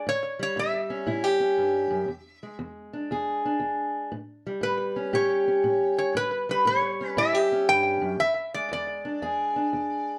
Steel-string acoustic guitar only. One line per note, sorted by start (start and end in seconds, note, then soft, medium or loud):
0.07 0.53 A2 medium
0.39 2.09 G3 medium
0.56 1.03 A2 medium
0.90 1.39 C#4 medium
1.07 1.54 A2 medium
1.07 1.24 E4 medium
1.24 2.08 G4 medium
1.40 2.06 C#4 medium
1.58 1.90 G2 medium
1.91 2.08 F#2 medium
2.08 2.56 E2 medium
2.43 4.10 G#3 soft
2.59 3.06 E2 medium
2.93 3.44 D4 soft
3.11 3.58 E2 medium
3.11 4.11 G#4 medium
3.45 4.11 D4 medium
3.60 4.08 E2 medium
4.12 4.59 A2 medium
4.46 6.48 G3 medium
4.61 5.09 A2 medium
4.96 5.46 C#4 medium
5.13 5.61 A2 medium
5.13 6.13 G4 medium
5.48 6.14 C#4 medium
5.64 6.12 A2 medium
6.15 6.63 A2 medium
6.49 8.20 G3 medium
6.65 7.14 A2 medium
7.01 7.51 C#4 medium
7.17 7.65 A2 medium
7.17 7.35 E4 medium
7.35 8.20 G4 medium
7.52 8.18 C#4 medium
7.69 8.01 G2 medium
8.01 8.19 F#2 medium
8.20 8.68 E2 medium
8.55 10.19 G#3 medium
8.71 9.19 E2 medium
9.05 9.55 D4 medium
9.22 9.70 E2 medium
9.22 10.19 G#4 medium
9.56 10.19 D4 medium
9.73 10.19 E2 medium